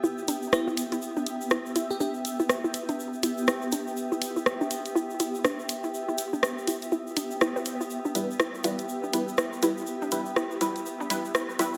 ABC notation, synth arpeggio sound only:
X:1
M:4/4
L:1/16
Q:"Swing 16ths" 1/4=122
K:Em
V:1 name="Synth arpeggio sound"
E z D z2 E z E z D z2 E z E z | D z2 E z E z D z2 E z E z D z | z E z E z D z2 E z E z D z2 E | z E z D z2 E z E z D z E B z E |
z D z2 E z E z2 D z2 E z E z | z D z2 E z E z2 D z2 E z E z |]